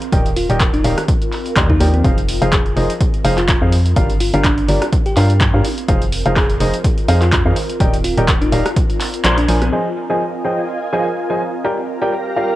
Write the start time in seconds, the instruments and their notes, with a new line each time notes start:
Already playing: ambient pad C4 F4 A#4
0.02 closed hi-hat
0.12 fm bass D#1, upright piano D#3 D#4 G4 A#4 D5 G5, kick, closed hi-hat
0.22 ambient pad D5
0.26 closed hi-hat
0.36 fm electric piano F4, open hi-hat
0.50 fm bass D#1, upright piano D#3 D#4 G4 A#4 D5 G5, closed hi-hat
0.60 kick, clap, closed hi-hat
0.74 fm electric piano D#4, closed hi-hat
0.84 fm bass D#1, upright piano D#3 D#4 G4 A#4 D5 F5, open hi-hat
0.98 cross-stick, closed hi-hat
1.08 kick, closed hi-hat
1.22 closed hi-hat
1.32 clap, open hi-hat
1.46 closed hi-hat
1.56 fm bass D#2, upright piano D#3 D#4 G4 A#4 D5 C6, kick, clap, closed hi-hat
1.70 fm electric piano D#4, kick
1.80 fm bass D#2, upright piano F3 D#4 G4 A#4 D5 G5, open hi-hat
1.94 fm electric piano C4, closed hi-hat
2.04 fm bass F1, upright piano F3 D#4 F4 G#4 C5 F5, kick, closed hi-hat
2.18 closed hi-hat
2.28 open hi-hat
2.42 fm bass F1, upright piano F3 D#4 F4 G#4 C5 F5, closed hi-hat
2.52 fm electric piano G#4, kick, clap, closed hi-hat
2.66 closed hi-hat
2.73 fm bass F1, upright piano F3 D#4 F4 G#4 C5 D#5, ambient pad D#5, open hi-hat
2.90 closed hi-hat
3.00 kick, closed hi-hat
3.14 closed hi-hat
3.24 fm bass F1, upright piano F3 D#4 F4 G#4 C5 F5, open hi-hat
3.38 fm electric piano F4, clap, closed hi-hat
3.48 kick, clap, closed hi-hat
3.62 fm bass F2, upright piano F3 D#4 F4 G#4 C5 F5
3.72 open hi-hat
3.86 closed hi-hat
3.96 fm bass G1, upright piano G3 D4 F4 G4 A#4 F5, ambient pad C4, kick, closed hi-hat
4.10 ambient pad A#4, closed hi-hat
4.19 ambient pad F4, fm electric piano F4, open hi-hat
4.34 fm bass G1, upright piano G3 D4 F4 G4 A#4 F5, fm electric piano D4, closed hi-hat
4.44 fm electric piano D4, kick, clap, closed hi-hat
4.58 closed hi-hat
4.68 fm bass G1, upright piano G3 D4 F4 G4 A#4 D5, open hi-hat
4.82 cross-stick, closed hi-hat
4.92 kick, closed hi-hat
5.06 fm electric piano G4, closed hi-hat
5.16 fm bass G2, upright piano G3 D4 F4 G4 A#4 F5, clap, open hi-hat
5.30 closed hi-hat
5.40 kick, clap, closed hi-hat
5.54 fm bass G2, upright piano D4 F4 G4 A#4 F5
5.64 open hi-hat
5.78 closed hi-hat
5.88 fm bass F1, upright piano F3 D#4 F4 G#4 C5 F5, kick, closed hi-hat
5.99 ambient pad D#5, closed hi-hat
6.12 open hi-hat
6.26 fm bass F1, upright piano F3 D#4 F4 G#4 C5 F5, closed hi-hat
6.36 fm electric piano G#4, kick, clap, closed hi-hat
6.50 closed hi-hat
6.60 fm bass F1, upright piano F3 D#4 F4 G#4 C5 D#5, open hi-hat
6.74 closed hi-hat
6.84 kick, closed hi-hat
6.98 closed hi-hat
7.08 fm bass F2, upright piano F3 D#4 F4 G#4 C5 F5, open hi-hat
7.22 fm electric piano F4, clap, closed hi-hat
7.32 kick, clap, closed hi-hat
7.46 fm bass F2, upright piano D#3 D#4 F4 G#4 C5 F5
7.56 open hi-hat
7.70 closed hi-hat
7.80 fm bass D#1, upright piano D#3 D#4 G4 A#4 D5 G5, ambient pad D5, kick, closed hi-hat
7.94 closed hi-hat
8.04 fm electric piano F4, open hi-hat
8.18 fm bass D#1, upright piano D#3 D#4 G4 A#4 D5 G5, closed hi-hat
8.28 kick, clap, closed hi-hat
8.42 fm electric piano D#4, closed hi-hat
8.52 fm bass D#1, upright piano D#4 G4 A#4 D5 F5, open hi-hat
8.66 cross-stick, closed hi-hat
8.76 kick, closed hi-hat
8.90 closed hi-hat
9.00 clap, open hi-hat
9.14 closed hi-hat
9.24 fm bass A#1, upright piano A#3 F4 A#4 C5 D5 C6, clap, closed hi-hat
9.38 fm electric piano D4, closed hi-hat
9.48 fm bass A#1, upright piano F3 F4 A#4 C5 D5 G#5, open hi-hat
9.62 fm electric piano C4, cross-stick, closed hi-hat
9.72 upright piano F3 F4 G#4 C5 D#5 G#5, analog synth pad F4 D#5 G#5, crash
9.86 closed hi-hat
10.10 upright piano F3 F4 G#4 C5 D#5 G#5, closed hi-hat
10.20 closed hi-hat
10.34 closed hi-hat
10.44 upright piano F3 F4 G#4 C5 D#5 G5
10.51 ambient pad D#5
10.58 closed hi-hat
10.68 closed hi-hat
10.82 closed hi-hat
10.92 upright piano F3 F4 G#4 C5 D#5 G#5
11.16 closed hi-hat
11.30 upright piano F3 F4 G#4 C5 D#5 G#5, closed hi-hat
11.54 closed hi-hat
11.64 ambient pad G3, upright piano G3 F4 G4 A#4 D5 G5, analog synth pad G4 F5 A#5, closed hi-hat
11.78 closed hi-hat
12.02 upright piano G3 F4 G4 A#4 D5 G5, closed hi-hat
12.13 closed hi-hat
12.26 closed hi-hat
12.37 upright piano G3 F4 G4 A#4 D5 F5
12.50 closed hi-hat